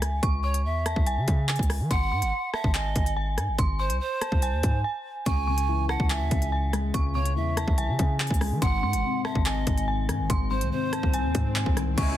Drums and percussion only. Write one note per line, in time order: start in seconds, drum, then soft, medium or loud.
0.02 cross-stick medium
0.02 closed hi-hat medium
0.23 kick loud
0.23 closed hi-hat medium
0.54 closed hi-hat medium
0.86 cross-stick loud
0.86 closed hi-hat medium
0.96 kick medium
1.06 closed hi-hat medium
1.28 kick loud
1.28 closed hi-hat medium
1.49 clap loud
1.49 closed hi-hat soft
1.56 kick medium
1.56 closed hi-hat medium
1.63 closed hi-hat medium
1.70 cross-stick medium
1.70 open hi-hat medium
1.91 kick loud
1.91 closed hi-hat medium
2.22 closed hi-hat medium
2.54 cross-stick loud
2.64 kick medium
2.74 clap loud
2.74 closed hi-hat medium
2.96 kick loud
2.96 closed hi-hat medium
3.06 closed hi-hat medium
3.38 cross-stick medium
3.38 closed hi-hat medium
3.58 kick loud
3.58 closed hi-hat medium
3.90 closed hi-hat medium
4.21 cross-stick loud
4.21 closed hi-hat medium
4.32 kick medium
4.42 closed hi-hat medium
4.63 kick loud
4.63 closed hi-hat medium
5.26 kick loud
5.26 closed hi-hat medium
5.58 closed hi-hat medium
5.89 cross-stick loud
6.00 kick medium
6.10 clap loud
6.10 closed hi-hat medium
6.31 kick medium
6.31 closed hi-hat medium
6.42 closed hi-hat medium
6.73 cross-stick medium
6.73 closed hi-hat medium
6.94 kick loud
6.94 closed hi-hat medium
7.25 closed hi-hat medium
7.57 cross-stick loud
7.57 closed hi-hat medium
7.68 kick medium
7.78 closed hi-hat medium
7.99 kick loud
7.99 closed hi-hat medium
8.20 clap loud
8.20 closed hi-hat soft
8.27 kick loud
8.27 closed hi-hat medium
8.34 closed hi-hat medium
8.41 cross-stick medium
8.41 open hi-hat medium
8.62 kick loud
8.62 closed hi-hat medium
8.93 closed hi-hat medium
9.25 cross-stick loud
9.35 kick medium
9.46 clap loud
9.46 closed hi-hat medium
9.67 kick loud
9.67 closed hi-hat medium
9.78 closed hi-hat medium
10.09 cross-stick medium
10.09 closed hi-hat medium
10.30 kick loud
10.30 closed hi-hat medium
10.61 closed hi-hat medium
10.93 cross-stick loud
10.93 closed hi-hat medium
11.03 kick loud
11.14 closed hi-hat medium
11.35 kick medium
11.35 closed hi-hat medium
11.56 clap loud
11.56 closed hi-hat medium
11.66 kick medium
11.77 cross-stick medium
11.77 closed hi-hat medium
11.98 kick loud
11.98 closed hi-hat loud
11.98 crash loud